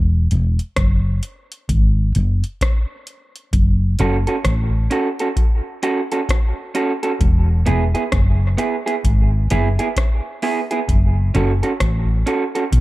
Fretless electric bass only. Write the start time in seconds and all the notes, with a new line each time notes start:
Already playing: E1
0.32 E1
0.77 F#1
1.69 G#1
2.16 F#1
3.53 F#1
4.00 F#1
4.45 A1
7.21 E1
7.67 E1
8.13 F#1
9.05 G#1
9.52 F#1
10.89 F#1
11.35 F#1
11.81 A1
12.73 B1